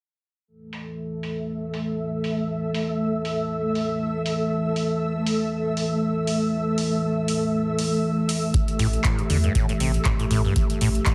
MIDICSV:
0, 0, Header, 1, 6, 480
1, 0, Start_track
1, 0, Tempo, 504202
1, 453, Time_signature, 4, 2, 24, 8
1, 10610, End_track
2, 0, Start_track
2, 0, Title_t, "Ambient pad"
2, 0, Program_c, 0, 92
2, 452, Note_on_c, 0, 57, 77
2, 565, Note_on_c, 0, 69, 77
2, 674, Note_on_c, 0, 76, 74
2, 1108, Note_on_c, 0, 88, 73
2, 10610, Note_off_c, 0, 57, 0
2, 10610, Note_off_c, 0, 69, 0
2, 10610, Note_off_c, 0, 76, 0
2, 10610, Note_off_c, 0, 88, 0
2, 10610, End_track
3, 0, Start_track
3, 0, Title_t, "Analog synth pad"
3, 0, Program_c, 1, 89
3, 454, Note_on_c, 1, 52, 77
3, 454, Note_on_c, 1, 57, 71
3, 454, Note_on_c, 1, 69, 83
3, 8096, Note_off_c, 1, 69, 0
3, 8132, Note_on_c, 1, 67, 84
3, 10610, Note_off_c, 1, 52, 0
3, 10610, Note_off_c, 1, 57, 0
3, 10610, Note_off_c, 1, 67, 0
3, 10610, End_track
4, 0, Start_track
4, 0, Title_t, "Acid bass"
4, 0, Program_c, 2, 38
4, 8373, Note_on_c, 2, 45, 99
4, 8446, Note_off_c, 2, 45, 0
4, 8614, Note_on_c, 2, 45, 84
4, 8746, Note_on_c, 2, 43, 75
4, 8761, Note_off_c, 2, 45, 0
4, 8782, Note_off_c, 2, 43, 0
4, 8853, Note_on_c, 2, 50, 76
4, 8926, Note_off_c, 2, 50, 0
4, 8986, Note_on_c, 2, 43, 75
4, 9074, Note_off_c, 2, 43, 0
4, 9092, Note_on_c, 2, 45, 96
4, 9202, Note_off_c, 2, 45, 0
4, 9227, Note_on_c, 2, 45, 77
4, 9262, Note_off_c, 2, 45, 0
4, 9334, Note_on_c, 2, 48, 79
4, 9443, Note_off_c, 2, 48, 0
4, 9573, Note_on_c, 2, 45, 83
4, 9646, Note_off_c, 2, 45, 0
4, 9705, Note_on_c, 2, 45, 76
4, 9764, Note_off_c, 2, 45, 0
4, 9812, Note_on_c, 2, 45, 99
4, 9922, Note_off_c, 2, 45, 0
4, 9945, Note_on_c, 2, 43, 77
4, 10034, Note_off_c, 2, 43, 0
4, 10293, Note_on_c, 2, 45, 99
4, 10366, Note_off_c, 2, 45, 0
4, 10533, Note_on_c, 2, 45, 83
4, 10610, Note_off_c, 2, 45, 0
4, 10610, End_track
5, 0, Start_track
5, 0, Title_t, "Sub bass"
5, 0, Program_c, 3, 38
5, 8372, Note_on_c, 3, 33, 97
5, 8538, Note_off_c, 3, 33, 0
5, 8852, Note_on_c, 3, 40, 84
5, 9018, Note_off_c, 3, 40, 0
5, 9333, Note_on_c, 3, 33, 91
5, 9499, Note_off_c, 3, 33, 0
5, 9812, Note_on_c, 3, 33, 85
5, 9979, Note_off_c, 3, 33, 0
5, 10292, Note_on_c, 3, 33, 99
5, 10459, Note_off_c, 3, 33, 0
5, 10610, End_track
6, 0, Start_track
6, 0, Title_t, "Drums"
6, 693, Note_on_c, 9, 46, 102
6, 788, Note_off_c, 9, 46, 0
6, 1173, Note_on_c, 9, 46, 103
6, 1268, Note_off_c, 9, 46, 0
6, 1653, Note_on_c, 9, 46, 101
6, 1748, Note_off_c, 9, 46, 0
6, 2133, Note_on_c, 9, 46, 100
6, 2228, Note_off_c, 9, 46, 0
6, 2613, Note_on_c, 9, 46, 106
6, 2708, Note_off_c, 9, 46, 0
6, 3094, Note_on_c, 9, 46, 105
6, 3189, Note_off_c, 9, 46, 0
6, 3573, Note_on_c, 9, 46, 101
6, 3668, Note_off_c, 9, 46, 0
6, 4053, Note_on_c, 9, 46, 104
6, 4148, Note_off_c, 9, 46, 0
6, 4533, Note_on_c, 9, 46, 106
6, 4628, Note_off_c, 9, 46, 0
6, 5012, Note_on_c, 9, 46, 106
6, 5108, Note_off_c, 9, 46, 0
6, 5492, Note_on_c, 9, 46, 108
6, 5587, Note_off_c, 9, 46, 0
6, 5972, Note_on_c, 9, 46, 105
6, 6068, Note_off_c, 9, 46, 0
6, 6453, Note_on_c, 9, 46, 106
6, 6548, Note_off_c, 9, 46, 0
6, 6933, Note_on_c, 9, 46, 106
6, 7028, Note_off_c, 9, 46, 0
6, 7412, Note_on_c, 9, 46, 102
6, 7507, Note_off_c, 9, 46, 0
6, 7892, Note_on_c, 9, 46, 106
6, 7987, Note_off_c, 9, 46, 0
6, 8132, Note_on_c, 9, 36, 114
6, 8132, Note_on_c, 9, 42, 83
6, 8227, Note_off_c, 9, 42, 0
6, 8228, Note_off_c, 9, 36, 0
6, 8265, Note_on_c, 9, 42, 36
6, 8360, Note_off_c, 9, 42, 0
6, 8371, Note_on_c, 9, 46, 100
6, 8467, Note_off_c, 9, 46, 0
6, 8505, Note_on_c, 9, 42, 36
6, 8600, Note_off_c, 9, 42, 0
6, 8609, Note_on_c, 9, 39, 110
6, 8612, Note_on_c, 9, 42, 87
6, 8613, Note_on_c, 9, 36, 116
6, 8704, Note_off_c, 9, 39, 0
6, 8708, Note_off_c, 9, 36, 0
6, 8708, Note_off_c, 9, 42, 0
6, 8745, Note_on_c, 9, 42, 36
6, 8841, Note_off_c, 9, 42, 0
6, 8852, Note_on_c, 9, 46, 102
6, 8947, Note_off_c, 9, 46, 0
6, 8985, Note_on_c, 9, 42, 36
6, 9081, Note_off_c, 9, 42, 0
6, 9093, Note_on_c, 9, 36, 114
6, 9093, Note_on_c, 9, 42, 88
6, 9188, Note_off_c, 9, 36, 0
6, 9188, Note_off_c, 9, 42, 0
6, 9226, Note_on_c, 9, 42, 37
6, 9321, Note_off_c, 9, 42, 0
6, 9332, Note_on_c, 9, 46, 101
6, 9427, Note_off_c, 9, 46, 0
6, 9465, Note_on_c, 9, 42, 36
6, 9560, Note_off_c, 9, 42, 0
6, 9568, Note_on_c, 9, 39, 111
6, 9572, Note_on_c, 9, 42, 89
6, 9573, Note_on_c, 9, 36, 115
6, 9663, Note_off_c, 9, 39, 0
6, 9667, Note_off_c, 9, 42, 0
6, 9668, Note_off_c, 9, 36, 0
6, 9706, Note_on_c, 9, 42, 37
6, 9801, Note_off_c, 9, 42, 0
6, 9812, Note_on_c, 9, 46, 104
6, 9907, Note_off_c, 9, 46, 0
6, 10052, Note_on_c, 9, 42, 87
6, 10053, Note_on_c, 9, 36, 109
6, 10147, Note_off_c, 9, 42, 0
6, 10148, Note_off_c, 9, 36, 0
6, 10185, Note_on_c, 9, 42, 38
6, 10280, Note_off_c, 9, 42, 0
6, 10292, Note_on_c, 9, 46, 101
6, 10387, Note_off_c, 9, 46, 0
6, 10426, Note_on_c, 9, 42, 38
6, 10521, Note_off_c, 9, 42, 0
6, 10529, Note_on_c, 9, 39, 112
6, 10533, Note_on_c, 9, 36, 111
6, 10533, Note_on_c, 9, 42, 89
6, 10610, Note_off_c, 9, 36, 0
6, 10610, Note_off_c, 9, 39, 0
6, 10610, Note_off_c, 9, 42, 0
6, 10610, End_track
0, 0, End_of_file